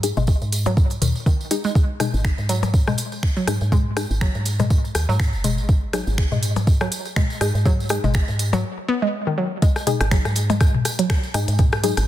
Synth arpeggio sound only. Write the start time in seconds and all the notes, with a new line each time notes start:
0.17 G#3
0.66 F#3
1.02 D#3
1.26 D#3
1.51 D#4
1.65 G#3
2.00 G#3
2.49 F#3
2.88 G#3
3.37 F#3
3.72 G#3
4.21 F#3
4.60 G#3
5.09 F#3
5.44 G#3
5.93 F#3
6.32 G#3
6.81 F#3
7.16 G#3
7.66 F#3
8.04 G#3
8.53 F#3
8.88 B3
9.02 G#3
9.27 D#3
9.38 F#3
9.62 G#3
10.11 F#3
10.50 G#3
10.99 F#3
11.34 G#3
11.84 F#3